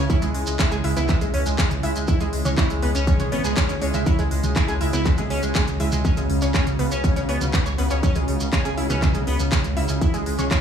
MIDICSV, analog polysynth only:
0, 0, Header, 1, 2, 480
1, 0, Start_track
1, 0, Key_signature, 4, "minor"
1, 0, Tempo, 495868
1, 94, Time_signature, 4, 2, 24, 8
1, 10270, End_track
2, 0, Start_track
2, 0, Title_t, "Analog polysynth"
2, 0, Program_c, 0, 90
2, 93, Note_on_c, 0, 64, 104
2, 174, Note_off_c, 0, 64, 0
2, 213, Note_on_c, 0, 56, 65
2, 294, Note_off_c, 0, 56, 0
2, 333, Note_on_c, 0, 56, 69
2, 414, Note_off_c, 0, 56, 0
2, 454, Note_on_c, 0, 56, 63
2, 534, Note_off_c, 0, 56, 0
2, 573, Note_on_c, 0, 64, 99
2, 654, Note_off_c, 0, 64, 0
2, 694, Note_on_c, 0, 56, 63
2, 774, Note_off_c, 0, 56, 0
2, 814, Note_on_c, 0, 56, 67
2, 894, Note_off_c, 0, 56, 0
2, 934, Note_on_c, 0, 64, 96
2, 1014, Note_off_c, 0, 64, 0
2, 1053, Note_on_c, 0, 56, 67
2, 1134, Note_off_c, 0, 56, 0
2, 1174, Note_on_c, 0, 56, 66
2, 1254, Note_off_c, 0, 56, 0
2, 1293, Note_on_c, 0, 61, 92
2, 1373, Note_off_c, 0, 61, 0
2, 1414, Note_on_c, 0, 56, 63
2, 1494, Note_off_c, 0, 56, 0
2, 1533, Note_on_c, 0, 56, 64
2, 1613, Note_off_c, 0, 56, 0
2, 1773, Note_on_c, 0, 56, 61
2, 1854, Note_off_c, 0, 56, 0
2, 1894, Note_on_c, 0, 56, 67
2, 1974, Note_off_c, 0, 56, 0
2, 2013, Note_on_c, 0, 64, 104
2, 2093, Note_off_c, 0, 64, 0
2, 2134, Note_on_c, 0, 56, 64
2, 2214, Note_off_c, 0, 56, 0
2, 2254, Note_on_c, 0, 56, 64
2, 2334, Note_off_c, 0, 56, 0
2, 2375, Note_on_c, 0, 56, 61
2, 2454, Note_off_c, 0, 56, 0
2, 2494, Note_on_c, 0, 64, 99
2, 2574, Note_off_c, 0, 64, 0
2, 2616, Note_on_c, 0, 56, 65
2, 2695, Note_off_c, 0, 56, 0
2, 2735, Note_on_c, 0, 56, 66
2, 2815, Note_off_c, 0, 56, 0
2, 2855, Note_on_c, 0, 61, 98
2, 2934, Note_off_c, 0, 61, 0
2, 2975, Note_on_c, 0, 56, 69
2, 3055, Note_off_c, 0, 56, 0
2, 3096, Note_on_c, 0, 56, 64
2, 3175, Note_off_c, 0, 56, 0
2, 3216, Note_on_c, 0, 59, 98
2, 3295, Note_off_c, 0, 59, 0
2, 3336, Note_on_c, 0, 56, 65
2, 3415, Note_off_c, 0, 56, 0
2, 3456, Note_on_c, 0, 56, 67
2, 3535, Note_off_c, 0, 56, 0
2, 3695, Note_on_c, 0, 56, 66
2, 3774, Note_off_c, 0, 56, 0
2, 3815, Note_on_c, 0, 56, 67
2, 3894, Note_off_c, 0, 56, 0
2, 3934, Note_on_c, 0, 64, 98
2, 4014, Note_off_c, 0, 64, 0
2, 4053, Note_on_c, 0, 56, 65
2, 4134, Note_off_c, 0, 56, 0
2, 4174, Note_on_c, 0, 56, 65
2, 4254, Note_off_c, 0, 56, 0
2, 4294, Note_on_c, 0, 56, 61
2, 4374, Note_off_c, 0, 56, 0
2, 4414, Note_on_c, 0, 64, 96
2, 4494, Note_off_c, 0, 64, 0
2, 4534, Note_on_c, 0, 56, 67
2, 4614, Note_off_c, 0, 56, 0
2, 4654, Note_on_c, 0, 56, 65
2, 4734, Note_off_c, 0, 56, 0
2, 4773, Note_on_c, 0, 64, 95
2, 4854, Note_off_c, 0, 64, 0
2, 4894, Note_on_c, 0, 56, 67
2, 4974, Note_off_c, 0, 56, 0
2, 5013, Note_on_c, 0, 56, 62
2, 5094, Note_off_c, 0, 56, 0
2, 5133, Note_on_c, 0, 61, 97
2, 5214, Note_off_c, 0, 61, 0
2, 5254, Note_on_c, 0, 56, 68
2, 5334, Note_off_c, 0, 56, 0
2, 5375, Note_on_c, 0, 56, 67
2, 5454, Note_off_c, 0, 56, 0
2, 5614, Note_on_c, 0, 56, 63
2, 5694, Note_off_c, 0, 56, 0
2, 5735, Note_on_c, 0, 56, 70
2, 5814, Note_off_c, 0, 56, 0
2, 5854, Note_on_c, 0, 61, 101
2, 5934, Note_off_c, 0, 61, 0
2, 5973, Note_on_c, 0, 49, 65
2, 6054, Note_off_c, 0, 49, 0
2, 6093, Note_on_c, 0, 49, 66
2, 6174, Note_off_c, 0, 49, 0
2, 6214, Note_on_c, 0, 49, 61
2, 6294, Note_off_c, 0, 49, 0
2, 6334, Note_on_c, 0, 61, 96
2, 6414, Note_off_c, 0, 61, 0
2, 6453, Note_on_c, 0, 49, 69
2, 6533, Note_off_c, 0, 49, 0
2, 6573, Note_on_c, 0, 49, 63
2, 6653, Note_off_c, 0, 49, 0
2, 6694, Note_on_c, 0, 61, 94
2, 6774, Note_off_c, 0, 61, 0
2, 6814, Note_on_c, 0, 49, 67
2, 6894, Note_off_c, 0, 49, 0
2, 6932, Note_on_c, 0, 49, 67
2, 7013, Note_off_c, 0, 49, 0
2, 7053, Note_on_c, 0, 59, 94
2, 7134, Note_off_c, 0, 59, 0
2, 7174, Note_on_c, 0, 49, 66
2, 7254, Note_off_c, 0, 49, 0
2, 7294, Note_on_c, 0, 49, 70
2, 7374, Note_off_c, 0, 49, 0
2, 7533, Note_on_c, 0, 49, 62
2, 7614, Note_off_c, 0, 49, 0
2, 7655, Note_on_c, 0, 49, 66
2, 7734, Note_off_c, 0, 49, 0
2, 7775, Note_on_c, 0, 61, 106
2, 7855, Note_off_c, 0, 61, 0
2, 7896, Note_on_c, 0, 49, 66
2, 7975, Note_off_c, 0, 49, 0
2, 8016, Note_on_c, 0, 49, 65
2, 8095, Note_off_c, 0, 49, 0
2, 8135, Note_on_c, 0, 49, 62
2, 8215, Note_off_c, 0, 49, 0
2, 8255, Note_on_c, 0, 61, 96
2, 8334, Note_off_c, 0, 61, 0
2, 8374, Note_on_c, 0, 49, 67
2, 8454, Note_off_c, 0, 49, 0
2, 8495, Note_on_c, 0, 49, 67
2, 8574, Note_off_c, 0, 49, 0
2, 8614, Note_on_c, 0, 61, 95
2, 8694, Note_off_c, 0, 61, 0
2, 8734, Note_on_c, 0, 49, 70
2, 8814, Note_off_c, 0, 49, 0
2, 8855, Note_on_c, 0, 49, 64
2, 8935, Note_off_c, 0, 49, 0
2, 8975, Note_on_c, 0, 59, 101
2, 9054, Note_off_c, 0, 59, 0
2, 9095, Note_on_c, 0, 49, 65
2, 9174, Note_off_c, 0, 49, 0
2, 9214, Note_on_c, 0, 49, 65
2, 9294, Note_off_c, 0, 49, 0
2, 9454, Note_on_c, 0, 49, 65
2, 9534, Note_off_c, 0, 49, 0
2, 9574, Note_on_c, 0, 49, 67
2, 9654, Note_off_c, 0, 49, 0
2, 9693, Note_on_c, 0, 64, 98
2, 9774, Note_off_c, 0, 64, 0
2, 9814, Note_on_c, 0, 56, 65
2, 9894, Note_off_c, 0, 56, 0
2, 9934, Note_on_c, 0, 56, 67
2, 10014, Note_off_c, 0, 56, 0
2, 10055, Note_on_c, 0, 56, 61
2, 10135, Note_off_c, 0, 56, 0
2, 10175, Note_on_c, 0, 64, 99
2, 10254, Note_off_c, 0, 64, 0
2, 10270, End_track
0, 0, End_of_file